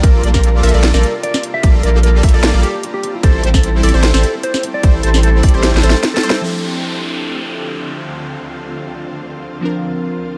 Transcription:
Already playing: ambient pad A#3 F4, harp C4 F4
0.03 sub bass A#1, supersaw synth G3 A#3 F4 A4, ambient pad G3, harp D4, clean electric guitar A#4, synth pluck D5, kick, closed hi-hat
0.14 harp F4
0.23 sub bass A#1, supersaw synth G3 A#3 F4 A4 D5, synth pluck D5, closed hi-hat
0.34 harp G4, clean electric guitar A#4, kick, snare
0.43 harp D4, closed hi-hat
0.63 sub bass A#1, supersaw synth G3 A#3 F4 A4 E5, harp D4, clean electric guitar A#4, synth pluck E5, open hi-hat
0.69 closed hi-hat
0.74 sub bass A#1, supersaw synth G3 A#3 F4 A4 D5, harp F4, synth pluck D5
0.83 snare, closed hi-hat
0.94 sub bass A#1, supersaw synth G3 A#3 F4 A4 D5, harp G4, clean electric guitar A#4, synth pluck D5, snare
1.03 harp D4, closed hi-hat
1.23 harp D4, clean electric guitar D5, closed hi-hat
1.34 harp F4, snare
1.43 closed hi-hat
1.54 harp G4, clean electric guitar E5
1.63 sub bass A#1, supersaw synth G3 A#3 F4 A4 D5, harp D4, synth pluck D5, kick, closed hi-hat
1.83 sub bass A#1, supersaw synth G3 A#3 F4 A4 D5, harp D4, clean electric guitar A#4, synth pluck D5, closed hi-hat
1.94 harp F4
2.03 clean electric guitar A#4, closed hi-hat
2.14 harp G4
2.23 sub bass A#1, harp D4, supersaw synth F4 A4 E5, synth pluck E5, kick, open hi-hat
2.29 closed hi-hat
2.34 sub bass A#1, supersaw synth G3 A#3 F4 A4 D5, clean electric guitar A4, synth pluck D5
2.43 harp D4, snare, closed hi-hat
2.54 sub bass A#1, supersaw synth G3 A#3 F4 A4 D5, harp F4, synth pluck D5
2.63 clean electric guitar G4, closed hi-hat
2.74 harp G4
2.83 harp D4, closed hi-hat
2.94 clean electric guitar G4
3.03 ambient pad A3 C4 G4, harp C4, closed hi-hat
3.14 harp E4
3.23 sub bass A1, supersaw synth G3 C4 E4 A4 C5, clean electric guitar A4, synth pluck C5, kick, closed hi-hat
3.34 harp G4
3.43 sub bass A1, supersaw synth G3 C4 E4 A4 C5, harp C4, synth pluck C5, closed hi-hat
3.54 clean electric guitar A4, kick, snare
3.63 harp C4, closed hi-hat
3.74 harp E4
3.83 sub bass A1, supersaw synth G3 C4 E4 A4 D5, clean electric guitar A4, synth pluck D5, open hi-hat
3.89 closed hi-hat
3.94 sub bass A1, supersaw synth G3 C4 E4 A4 C5, harp G4, synth pluck C5
4.03 harp C4, snare, closed hi-hat
4.14 sub bass A1, supersaw synth G3 C4 E4 A4 C5, clean electric guitar A4, synth pluck C5, snare
4.23 harp C4, closed hi-hat
4.34 harp E4
4.43 clean electric guitar C5, closed hi-hat
4.54 harp G4, snare
4.63 harp C4, closed hi-hat
4.74 clean electric guitar D5
4.83 sub bass A1, supersaw synth G3 C4 E4 A4 C5, synth pluck C5, kick, closed hi-hat
4.94 harp E4
5.03 sub bass A1, supersaw synth G3 C4 E4 A4 C5, clean electric guitar A4, synth pluck C5, closed hi-hat
5.14 harp G4, snare
5.23 harp C4, clean electric guitar A4, closed hi-hat
5.43 sub bass A1, supersaw synth G3 C4 E4 A4 D5, harp C4, synth pluck D5, kick, open hi-hat
5.49 closed hi-hat
5.54 sub bass A1, supersaw synth G3 C4 E4 A4 C5, harp E4, clean electric guitar G4, synth pluck C5
5.63 snare, closed hi-hat
5.74 sub bass A1, supersaw synth G3 C4 E4 A4 C5, harp G4, synth pluck C5, snare
5.83 sub bass A1, supersaw synth G3 C4 E4 A4 C5, harp C4, clean electric guitar A4, synth pluck C5, closed hi-hat
5.90 snare
6.03 harp C4, snare, closed hi-hat
6.14 harp E4, clean electric guitar A4, snare
6.23 supersaw synth G3 C4 E4 A4 C5, synth pluck C5, closed hi-hat
6.30 harp G4, snare
6.41 ambient pad D2 D3 C4 F4, synth keys F3 C4 D4, downlifter
6.45 synth keys A4
9.61 ambient pad C3 A#3 D4, synth keys F3 C4 D4
9.65 synth keys A#4

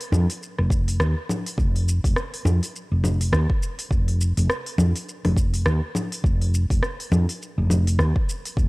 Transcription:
0.01 open hi-hat
0.12 fretless electric bass F2, low conga, shaker
0.30 open hi-hat, shaker
0.43 shaker
0.59 fretless electric bass F1, cross-stick
0.70 kick, shaker
0.88 open hi-hat, shaker
1.00 fretless electric bass D#2, cross-stick, shaker
1.29 low conga, shaker
1.46 open hi-hat, shaker
1.58 fretless electric bass F1, kick, shaker
1.76 open hi-hat
1.88 shaker
2.04 fretless electric bass F1, kick, open hi-hat, shaker
2.16 cross-stick, shaker
2.34 open hi-hat
2.45 fretless electric bass F2, low conga, shaker
2.63 open hi-hat, shaker
2.76 shaker
2.91 fretless electric bass F1
3.04 low conga, shaker
3.21 open hi-hat, shaker
3.32 fretless electric bass D#2, cross-stick, shaker
3.50 kick
3.63 shaker
3.79 open hi-hat, shaker
3.91 fretless electric bass F1, kick, shaker
4.08 open hi-hat
4.21 shaker
4.37 fretless electric bass F1, open hi-hat, shaker
4.50 cross-stick, shaker
4.66 open hi-hat
4.78 fretless electric bass F2, low conga, shaker
4.96 open hi-hat, shaker
5.09 shaker
5.25 fretless electric bass F1, cross-stick, open hi-hat, low conga
5.37 kick, shaker
5.54 open hi-hat, shaker
5.66 fretless electric bass D#2, cross-stick, shaker
5.95 low conga, shaker
6.12 open hi-hat, shaker
6.24 fretless electric bass F1, kick, shaker
6.41 open hi-hat
6.54 shaker
6.70 fretless electric bass F1, kick, open hi-hat, shaker
6.83 cross-stick, shaker
7.00 open hi-hat
7.12 fretless electric bass F2, low conga, shaker
7.29 open hi-hat, shaker
7.42 shaker
7.58 fretless electric bass F1
7.70 low conga, shaker
7.87 open hi-hat, shaker
7.99 fretless electric bass D#2, cross-stick, shaker
8.16 kick
8.29 shaker
8.45 open hi-hat, shaker
8.57 fretless electric bass F1, kick, shaker

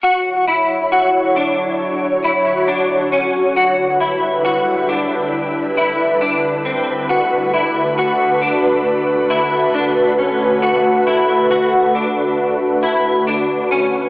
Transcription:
0.03 ambient pad D2 D3 F#3 E4 C#5, clean electric guitar F#4
0.47 clean electric guitar E4
0.92 clean electric guitar F#4
1.36 clean electric guitar D4
1.81 ambient pad F#4
2.24 clean electric guitar E4
2.68 clean electric guitar D4
3.12 clean electric guitar C#4
3.56 ambient pad G3 E4 B4, clean electric guitar F#4
4.00 clean electric guitar E4
4.45 clean electric guitar F#4
4.89 clean electric guitar D4
5.77 clean electric guitar E4
6.21 clean electric guitar D4
6.65 clean electric guitar C4
7.09 ambient pad A3 F#4, clean electric guitar F#4
7.53 clean electric guitar E4
7.98 clean electric guitar F#4
8.42 clean electric guitar D4
9.30 clean electric guitar E4
9.74 clean electric guitar D4
10.18 clean electric guitar C#4
10.62 clean electric guitar F#4
11.07 clean electric guitar E4
11.51 clean electric guitar F#4
11.95 clean electric guitar D4
12.83 clean electric guitar E4
13.27 clean electric guitar D4
13.71 clean electric guitar C#4

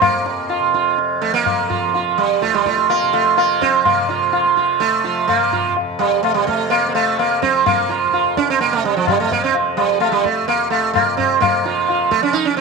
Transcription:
Already playing: tanpura C3 F3
0.00 tanpura F2, sitar A#3, tabla na, tabla ge
0.26 tabla te
0.49 sitar F4, tabla na
0.60 tanpura C3
0.74 sitar F4, tabla ke
0.98 tabla te
1.20 tanpura F3, sitar A3, tabla te
1.34 sitar A#3
1.46 tabla na, tabla ge
1.70 sitar F4, tabla ge
1.81 tanpura F3
1.94 sitar F4, tabla tin
2.18 sitar G3, tabla na
2.42 tanpura F2, sitar A3 F4, tabla te
2.54 sitar G3, tabla te
2.66 sitar A3 F4, tabla ke
2.78 tabla te
2.89 sitar A#3 F4, tabla na
3.03 tanpura C3
3.13 sitar A3 F4, tabla na
3.37 sitar A#3 F4, tabla na
3.61 tanpura F3, sitar C4 F4, tabla ke
3.85 tanpura C3, sitar A#3, tabla na, tabla ge
4.09 sitar F4, tabla te
4.32 sitar F4, tabla na
4.45 tanpura F3
4.57 sitar F4, tabla ke
4.80 sitar A3, tabla te
5.04 tanpura F3, sitar F4, tabla te
5.28 sitar A3, tabla na, tabla ge
5.39 sitar A#3
5.52 sitar F4, tabla ge
5.66 tanpura F2
5.77 tabla tin
5.99 sitar G3, tabla na
6.23 tanpura C3, sitar A3, tabla na
6.34 sitar G3
6.47 sitar A3, tabla ke
6.70 sitar A#3, tabla na
6.85 tanpura F3, sitar A#3
6.95 sitar A3, tabla na
7.19 sitar A#3, tabla na
7.42 tanpura F3, sitar C4, tabla ke
7.66 sitar A#3, tabla na, tabla ge
7.89 sitar F4, tabla te
8.04 tanpura F2
8.13 sitar F4, tabla na
8.37 sitar C#4, tabla ke
8.50 sitar C4
8.60 tanpura C3, sitar A#3, tabla te
8.73 sitar A3
8.84 sitar G3, tabla te
8.96 sitar F3
9.07 sitar G3, tabla na, tabla ge
9.20 tanpura F3, sitar A3
9.31 sitar A#3, tabla ge
9.44 sitar C4
9.55 tabla tin
9.77 sitar G3, tabla na
9.82 tanpura F3
10.00 sitar A3, tabla na
10.09 sitar G3 A3
10.24 sitar A3, tabla ke
10.42 tanpura F2
10.48 sitar A#3, tabla na
10.70 sitar A3, tabla na
10.93 sitar A#3, tabla na, tabla ge
11.01 tanpura C3
11.17 sitar C4, tabla ge
11.40 sitar A#3, tabla na, tabla ge
11.59 tanpura F3
11.65 sitar F4, tabla te
11.88 sitar F4, tabla na
12.11 sitar A3, tabla ke
12.19 tanpura F3, sitar C#4
12.33 sitar D#4, tabla te
12.45 sitar C#4
12.57 sitar C4

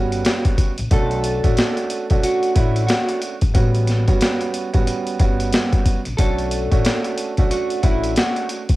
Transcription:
Already playing: upright bass G1, grand piano G3 B3 C#4 F#4
0.12 closed hi-hat
0.25 snare, closed hi-hat
0.45 kick, closed hi-hat
0.58 kick, closed hi-hat
0.78 upright bass A#1, closed hi-hat
0.91 upright bass B1, grand piano A3 C#4 D4 F#4, clean electric guitar A4, kick, closed hi-hat
1.11 closed hi-hat
1.24 closed hi-hat
1.43 upright bass A1, grand piano A3 C#4 D4 F#4, kick, closed hi-hat
1.57 snare, closed hi-hat
1.77 closed hi-hat
1.90 closed hi-hat
2.10 upright bass B1, grand piano A3 C#4 D4 F#4, kick, closed hi-hat
2.23 clean electric guitar F#4, closed hi-hat
2.43 closed hi-hat
2.55 upright bass A1, grand piano A3 C#4 D4 F#4, clean electric guitar E4, kick, closed hi-hat
2.76 closed hi-hat
2.87 clean electric guitar F#4, snare, closed hi-hat
3.09 closed hi-hat
3.22 closed hi-hat
3.41 upright bass G#1, kick, closed hi-hat
3.54 upright bass A1, grand piano G3 B3 C#4 F#4, kick, closed hi-hat
3.75 closed hi-hat
3.87 snare, closed hi-hat
4.08 upright bass G1, grand piano G3 B3 C#4 F#4, kick, closed hi-hat
4.21 snare, closed hi-hat
4.41 closed hi-hat
4.54 closed hi-hat
4.73 upright bass A1, grand piano G3 B3 C#4 F#4, kick, closed hi-hat
4.87 closed hi-hat
5.07 closed hi-hat
5.19 upright bass G1, grand piano G3 B3 C#4 F#4, kick, closed hi-hat
5.40 closed hi-hat
5.53 snare, closed hi-hat
5.73 kick, closed hi-hat
5.86 kick, closed hi-hat
6.05 upright bass A#1, closed hi-hat
6.17 upright bass B1, grand piano A3 C#4 D4 F#4, clean electric guitar A4, kick, closed hi-hat
6.38 closed hi-hat
6.51 closed hi-hat
6.71 upright bass A1, grand piano A3 C#4 D4 F#4, kick, closed hi-hat
6.85 snare, closed hi-hat
7.04 closed hi-hat
7.18 closed hi-hat
7.37 upright bass B1, grand piano A3 C#4 D4 F#4, kick, closed hi-hat
7.51 clean electric guitar F#4, closed hi-hat
7.70 closed hi-hat
7.83 upright bass A1, grand piano A3 C#4 D4 F#4, clean electric guitar E4, kick, closed hi-hat
8.04 closed hi-hat
8.16 clean electric guitar F#4, snare, closed hi-hat
8.36 closed hi-hat
8.49 closed hi-hat
8.69 upright bass G#1, kick, closed hi-hat

